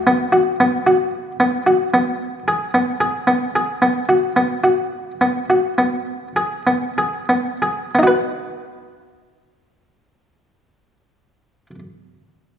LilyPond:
\new Staff \with { instrumentName = "Harpsichord" } { \time 7/4 \key b \major \tempo 4 = 103 b8 fis'8 b8 fis'4 b8 fis'8 b4 gis'8 b8 gis'8 b8 gis'8 | b8 fis'8 b8 fis'4 b8 fis'8 b4 gis'8 b8 gis'8 b8 gis'8 | <b dis' fis' b'>1.~ <b dis' fis' b'>4 | }